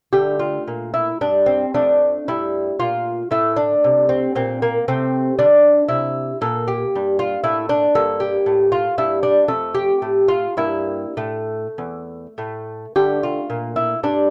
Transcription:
0.12 D3 A3 G4
0.39 F4
0.68 A#2
0.94 E4
1.21 G2 D4
1.46 C4
1.74 F2 A3 D4
2.28 G2 E4
2.80 A#2 F4
3.31 A2 A3 E4
3.56 D4
3.84 C3
4.09 C4
4.35 A#2 C4
4.62 A#3
4.88 C3 A3 C4
5.39 D3 D4
5.88 C3 E4
6.41 A#2 A#3 A4
6.68 G4
6.96 G2
7.19 F4
7.44 A2 E4
7.69 D4
7.95 G2 A#3 A4
8.20 G4
8.46 A2
8.72 F4
8.98 G2 E4
9.23 D4
9.48 F2 A3 A4
9.74 G4
10.02 A2
10.28 F4
10.57 G2 A#3 E4
11.17 A2 A3
11.78 E2
12.38 A2 A3
12.96 D3 A3 G4
13.23 F4
13.50 A#2
13.76 E4
14.03 G2 D4

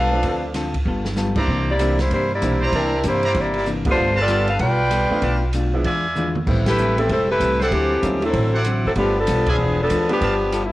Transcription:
Already playing: B1 G3 B3 D4 F4 A4 B4 F5
0.11 F3 A3 C4 D4 F4
0.23 D2 D3 C4 F4 A4, kick, ride
0.54 D3 C4 F4 A4, snare, hi-hat pedal, ride
0.74 kick, ride
0.85 G1 G3 B3 F4 A4
1.05 snare
1.16 G3 B3 F4 A4, snare, hi-hat pedal
1.36 C#2 G3 A#3 C4 D4 E4 C5 D5 A#5, kick, crash
1.48 C2 C3 E3 A#3 D4, kick
1.69 A#3 E4 G4 D5
1.79 C3 E3 G3 A#3 C4 D4 E4, hi-hat pedal, ride
1.99 A#3 E4 G4 C5, snare, ride
2.10 G2 C3 E3 A#3 D4 E4 G4 C5, kick, ride
2.34 A#3 E4 G4 D5
2.41 B1 C3 E3 G3 A#3 C4 D4 E4, hi-hat pedal, ride
2.60 A#3 E4 G4 C5 D5 A#5
2.72 C2 C3 E3 G3 A#3 D4 E4 A#4, kick, ride
3.03 G2 C3 E3 A#3 D4 E4 G4 C5, hi-hat pedal, ride
3.23 E4 C5 D5 A#5, ride
3.34 G1 C3 E3 A#3 D4, kick, ride
3.39 A#3 E4 G4 D5
3.54 ride
3.66 C3 E3 A#3 D4, hi-hat pedal
3.85 G3 A3 B3 D4 F4, kick, ride
3.90 A3 D4 F4 C5
3.96 G1 G3 B3 F4 A4
4.17 G4 A4 B4 D5 F5 A5
4.21 B3 F4
4.28 G3 B3 F4 A4, hi-hat pedal, ride
4.47 D4 A4 B4 F5, ride
4.59 B1 G3 B3 F4 A4 B4 D5 G5, kick, ride
4.90 G3 B3 F4 A4, hi-hat pedal, ride
5.10 F3 A3 B3 D4 F4, muted upright bass stroke
5.21 B1 B2 A3 D4 F4 B4 D5 A5, kick, ride
5.53 B2 A3 D4 F4, hi-hat pedal, ride
5.74 F3 G#3 B3 D4 E4
5.84 E2 E3 G#3 D4 F4 D5 E5 G#5, kick, ride
6.16 E3 G#3 D4 F4, hi-hat pedal, mid tom
6.35 mid tom
6.46 A1 A2 G3 A3 B3 C4 E4, kick, crash
6.66 A3 E4 G4 B4, snare, ride
6.78 A2 G3 C4 E4, hi-hat pedal
6.97 G3 A3 B3 C4 E4 A4, ride
7.09 E1 A2 G3 C4 E4 A4, kick, ride
7.30 A3 E4 G4 B4
7.40 C2 A2 G3 C4 E4, hi-hat pedal, ride
7.59 G3 C4 E4 A4 C5 D5 F#5, snare
7.71 D2 D3 E3 F#3 A3 C4 E4 G4, kick, ride
8.01 D#2 D3 F#3 G3 A#3 C4 C#4 D#4 E4 F4, hi-hat pedal, ride
8.21 F#3 A3 C4 D4 E4 A4, ride
8.33 A1 D3 F#3 C4 E4, kick, ride
8.53 E4 C5 D5 F#5
8.64 D3 F#3 C4 E4, hi-hat pedal, ride
8.85 G#1 F#3 C4 E4 A4
8.95 G1 F3 G3 A3 B3 D4 F4 G4 A4, kick, ride
9.18 F3 B3 D4 A4
9.27 B1 G3 B3 F4 A4, hi-hat pedal, ride
9.46 F3 B3 F4 G#4 D5 E5 G#5, kick, ride
9.51 D4
9.58 E1 E3 G#3 D4 F4
9.80 F3 B3 D4 A4
9.90 D2 E3 G#3 D4 F4, hi-hat pedal, ride
10.08 F3 G3 A3 B3 D4 G4, ride
10.21 G1 G3 B3 F4 G4 A4 B4 F5 A5, kick, ride
10.52 G3 B3 F4 A4, hi-hat pedal, ride
10.64 E4

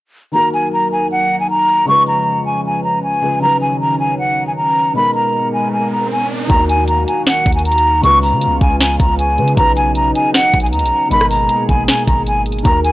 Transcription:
0.32 D#3 F#3 A#3 D#4 F#4 A#4 A#5
0.37 A#4
0.54 G#5
0.73 A#5
0.92 G#5
1.12 F#5
1.40 G#5
1.50 A#5
1.85 C#3 F3 G#3 C#4 F4 B4 C#6
1.91 B4
2.08 A#5
2.46 G#5
2.66 G#5
2.84 A#5
3.03 G#5
3.21 C#3 G#3 F4 B4
3.39 C#3 D#3 F#3 C#4 D#4 A#5
3.45 B4
3.62 G#5
3.81 A#5
4.00 G#5
4.19 F#5
4.47 G#5
4.56 A#5
4.93 B2 G#3 B3 D#4 A#4 B5, riser
4.99 A#4
5.15 A#5
5.53 G#5
5.73 G#5
5.92 A#5
6.12 G#5
6.47 D#2 D#3 A#3 F#4 A#5, kick, closed hi-hat
6.52 A#4
6.69 G#5, closed hi-hat
6.88 A#5, closed hi-hat
7.08 G#5, closed hi-hat
7.27 F#5, snare, closed hi-hat
7.46 D#2, kick, closed hi-hat
7.52 G#5, closed hi-hat
7.59 closed hi-hat
7.65 A#5, closed hi-hat
7.72 closed hi-hat
7.78 closed hi-hat
8.01 C#2 C#3 G#3 B3 F4 C#6, closed hi-hat
8.06 B4
8.23 A#5, open hi-hat
8.32 C#3
8.41 closed hi-hat
8.47 C#2
8.61 C#2 G#5, kick
8.81 G#5, snare, closed hi-hat
9.00 C#2 A#5, kick, closed hi-hat
9.19 G#5, closed hi-hat
9.37 C#3 G#3 F4 B4, closed hi-hat
9.48 closed hi-hat
9.55 B1 C#3 F#3 D#4 A#5, kick, closed hi-hat
9.60 B4
9.77 G#5, closed hi-hat
9.95 A#5, closed hi-hat
10.15 G#5, closed hi-hat
10.34 F#5, snare, closed hi-hat
10.53 B1, kick, closed hi-hat
10.60 G#5, closed hi-hat
10.66 closed hi-hat
10.72 D#2 A#5, closed hi-hat
10.79 B1, closed hi-hat
10.86 closed hi-hat
11.09 G#1 B2 G#3 A#3 D#4 G#4 B5, closed hi-hat
11.14 A#4
11.21 cross-stick
11.30 A#5, open hi-hat
11.49 closed hi-hat
11.69 G#1 G#5, kick
11.88 G#5, snare, closed hi-hat
12.07 G#1 A#5, kick, closed hi-hat
12.27 G#5, closed hi-hat
12.46 closed hi-hat
12.52 closed hi-hat
12.59 D#3, closed hi-hat
12.64 D#2 D#3 A#3 F#4 A#4 A#5, kick, closed hi-hat
12.84 G#5, closed hi-hat

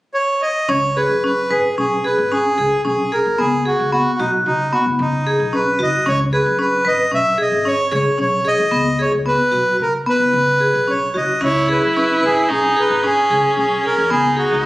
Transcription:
0.14 C#5
0.42 D#5
0.68 C#2 C#4 C#5
0.96 G#4 B4
1.09 F#2
1.24 C#4 B4
1.51 G#1 G#4 B4
1.78 B1 C#4 G#4
2.04 G#4 B4
2.18 G#1
2.32 C#4 G#4
2.58 C#2 G#4
2.85 B1 C#4 G#4
3.12 G#4 A#4
3.26 E2
3.38 C#2 B3 G#4
3.65 F#4 G#4
3.79 C#2
3.92 B3 F#4
4.19 B1 D#4 F#4
4.46 C#3 D#4
4.73 B3 F#4
4.86 F#1
4.99 C#3 D#4
5.27 G#4
5.40 B1
5.53 C#4 B4
5.79 F#1 F#4 D#5
6.06 C#2 C#4 C#5
6.33 G#4 B4
6.46 F#2
6.59 C#4 B4
6.85 G#1 B4 D#5
7.11 B1 C#4 E5
7.38 G#4 D#5
7.52 G#1
7.65 C#4 C#5
7.92 C#2 G#4 C#5
8.18 B1 C#4 C#5
8.45 G#4 D#5
8.58 E2
8.71 C#2 B3
8.99 G#4 C#5
9.12 C#2
9.26 B3 B4
9.52 B1 F#4
9.79 C#3 A#4
10.06 B3 B4
10.20 F#1
10.33 C#3
10.60 G#4
10.74 B1
10.88 C#4 C#5
11.14 F#1 F#4 D#5
11.41 C#2 C#4 E4 C#5
11.69 G#4 B4
11.82 F#2
11.97 C#4 B4
12.23 G#1 G#4 B4
12.49 B1 C#4 D#4 G#4
12.77 G#4 B4
12.90 G#1
13.03 C#4 G#4
13.30 C#2 G#4
13.57 B1 C#4 G#4
13.83 G#4 A#4
13.97 E2
14.10 C#2 B3 D#4 G#4
14.37 F#4 G#4
14.51 C#2

